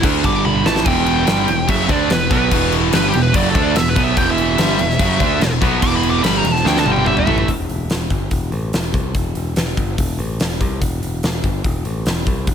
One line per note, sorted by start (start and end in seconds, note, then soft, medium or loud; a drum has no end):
0.02 0.23 D2 medium
0.02 0.22 D3 loud
0.02 0.23 A3 loud
0.02 0.24 D4 medium
0.02 kick loud
0.02 crash medium
0.23 0.63 G1 medium
0.23 0.64 G2 medium
0.23 0.64 D3 loud
0.23 0.65 G3 loud
0.23 0.45 D6 loud
0.23 kick loud
0.23 crash medium
0.45 0.65 B5 loud
0.45 high tom medium
0.64 0.85 A1 loud
0.64 0.85 A2 medium
0.64 0.85 E3 medium
0.64 0.86 A3 medium
0.64 0.87 A5 medium
0.64 snare loud
0.76 snare medium
0.84 1.25 E1 medium
0.84 1.25 E2 loud
0.84 1.26 B2 loud
0.84 1.26 E3 loud
0.84 1.67 G5 medium
0.84 kick loud
0.84 crash medium
1.06 crash medium
1.26 1.47 G1 medium
1.26 1.46 G2 medium
1.26 1.47 D3 medium
1.26 1.47 G3 medium
1.26 snare loud
1.26 crash medium
1.47 1.67 E1 medium
1.47 1.64 E2 medium
1.47 1.64 B2 medium
1.47 crash medium
1.67 1.88 F#1 medium
1.67 1.88 F#2 medium
1.67 1.88 C#3 medium
1.67 1.88 F#3 loud
1.67 1.90 E5 medium
1.67 kick loud
1.67 crash medium
1.88 2.09 D2 medium
1.88 2.09 D3 medium
1.88 2.09 A3 medium
1.88 2.09 D4 loud
1.88 2.10 D5 loud
1.88 kick loud
1.88 crash medium
2.09 2.30 E1 medium
2.09 2.26 E2 medium
2.09 2.26 B2 medium
2.09 2.31 B4 loud
2.09 snare loud
2.09 crash medium
2.29 2.50 B1 loud
2.29 2.49 B2 medium
2.29 2.50 F#3 loud
2.29 2.51 B3 medium
2.29 2.72 B4 medium
2.29 kick loud
2.29 snare soft
2.29 crash medium
2.50 2.90 E1 medium
2.50 2.91 E2 medium
2.50 2.91 B2 loud
2.50 2.92 E3 loud
2.50 kick loud
2.50 crash medium
2.72 crash medium
2.91 3.13 G1 medium
2.91 3.12 G2 loud
2.91 3.12 D3 loud
2.91 3.13 G3 loud
2.91 3.07 B4 loud
2.91 snare loud
2.91 crash medium
3.08 3.29 E2 medium
3.08 3.21 G4 medium
3.13 3.34 E1 medium
3.13 3.30 B2 medium
3.13 crash medium
3.22 3.35 B4 medium
3.32 3.53 F#1 loud
3.32 3.53 F#2 medium
3.32 3.53 C#3 loud
3.32 3.54 F#3 loud
3.32 3.48 D5 medium
3.32 kick loud
3.32 crash medium
3.49 3.62 A4 medium
3.54 3.74 D2 loud
3.54 3.74 D3 medium
3.54 3.75 A3 loud
3.54 3.75 D4 loud
3.54 kick loud
3.54 crash medium
3.63 3.76 D5 loud
3.75 3.95 E1 medium
3.75 3.92 E2 medium
3.75 3.92 B2 medium
3.75 3.89 E5 loud
3.75 snare loud
3.75 crash medium
3.89 4.03 B4 loud
3.95 4.16 B1 loud
3.95 4.15 B2 medium
3.95 4.16 F#3 loud
3.95 4.16 B3 loud
3.95 kick loud
3.95 snare soft
3.95 crash medium
4.04 4.17 E5 loud
4.16 4.55 E1 loud
4.16 4.57 E2 loud
4.16 4.57 B2 loud
4.16 4.58 E3 loud
4.16 4.30 G5 medium
4.16 kick loud
4.16 crash medium
4.31 5.51 E5 loud
4.38 crash medium
4.57 4.78 G1 loud
4.57 4.78 G2 medium
4.57 4.78 D3 loud
4.57 4.78 G3 loud
4.57 snare loud
4.57 crash medium
4.79 4.98 E1 medium
4.79 4.95 E2 medium
4.79 4.96 B2 medium
4.79 crash medium
4.90 snare soft
4.99 5.19 F#1 loud
4.99 5.20 F#2 medium
4.99 5.19 C#3 loud
4.99 5.19 F#3 loud
4.99 kick loud
4.99 crash medium
5.19 5.40 D2 medium
5.19 5.40 D3 medium
5.19 5.40 A3 loud
5.19 5.40 D4 loud
5.19 kick loud
5.19 crash medium
5.40 5.60 E1 medium
5.40 5.58 E2 medium
5.40 5.58 B2 medium
5.40 snare loud
5.40 crash medium
5.61 5.81 B1 loud
5.61 5.80 B2 medium
5.61 5.82 F#3 medium
5.61 5.82 B3 loud
5.61 kick loud
5.61 snare soft
5.61 crash medium
5.81 6.21 E1 loud
5.81 6.23 E2 loud
5.81 6.23 B2 loud
5.81 6.23 E3 loud
5.81 5.96 D6 loud
5.81 kick loud
5.81 crash medium
5.96 6.10 B5 loud
6.03 crash medium
6.10 6.23 D6 loud
6.23 6.42 G1 loud
6.23 6.44 G2 medium
6.23 6.44 D3 loud
6.23 6.44 G3 loud
6.23 6.38 B5 loud
6.23 snare loud
6.23 crash medium
6.38 6.52 A#5 loud
6.44 6.64 E1 medium
6.44 6.61 E2 medium
6.44 6.61 B2 medium
6.44 crash medium
6.52 6.67 A5 medium
6.52 snare soft
6.65 6.84 D2 loud
6.65 6.85 D3 loud
6.65 6.85 A3 loud
6.65 6.86 D4 loud
6.65 6.78 G5 loud
6.65 snare medium
6.76 6.92 A5 loud
6.76 snare medium
6.86 7.25 G1 medium
6.86 7.27 G2 loud
6.86 7.27 D3 loud
6.86 7.27 G3 loud
6.86 high tom medium
6.92 7.06 G5 loud
6.96 high tom medium
7.06 7.18 E5 loud
7.06 mid tom medium
7.17 7.47 E5 loud
7.17 mid tom medium
7.27 7.47 A1 loud
7.27 7.47 A2 medium
7.27 7.48 E3 loud
7.27 7.48 A3 loud
7.27 floor tom loud
7.38 floor tom loud
7.48 7.67 E1 medium
7.48 kick medium
7.48 open hi-hat medium
7.69 7.88 E1 medium
7.69 open hi-hat soft
7.89 8.09 E1 medium
7.89 snare medium
7.89 open hi-hat medium
8.10 8.30 G1 medium
8.10 kick medium
8.10 open hi-hat soft
8.31 8.51 E1 medium
8.31 kick medium
8.31 open hi-hat medium
8.52 8.71 A1 medium
8.52 open hi-hat soft
8.73 8.93 E1 medium
8.73 snare medium
8.73 open hi-hat medium
8.94 9.13 C2 medium
8.94 kick medium
8.94 open hi-hat soft
9.15 9.34 E1 medium
9.15 kick medium
9.15 open hi-hat medium
9.35 9.55 E1 medium
9.35 open hi-hat soft
9.56 9.76 E1 medium
9.56 snare loud
9.56 open hi-hat medium
9.77 9.96 G1 medium
9.77 kick medium
9.77 open hi-hat soft
9.98 10.18 E1 medium
9.98 kick medium
9.98 open hi-hat medium
10.19 10.38 A1 medium
10.19 open hi-hat soft
10.40 10.59 E1 medium
10.40 snare loud
10.40 open hi-hat medium
10.61 10.80 C2 medium
10.61 kick medium
10.61 open hi-hat soft
10.81 11.01 E1 medium
10.81 kick medium
10.81 open hi-hat medium
11.02 11.22 E1 medium
11.02 open hi-hat soft
11.23 11.42 E1 medium
11.23 snare medium
11.23 open hi-hat medium
11.44 11.63 G1 medium
11.44 kick medium
11.44 open hi-hat soft
11.64 11.84 E1 medium
11.64 kick loud
11.64 open hi-hat medium
11.85 12.05 A1 medium
11.85 open hi-hat soft
12.06 12.25 E1 medium
12.06 snare medium
12.06 open hi-hat medium
12.27 12.46 C2 medium
12.27 kick loud
12.27 open hi-hat soft
12.47 12.55 E1 medium
12.47 kick medium
12.47 open hi-hat medium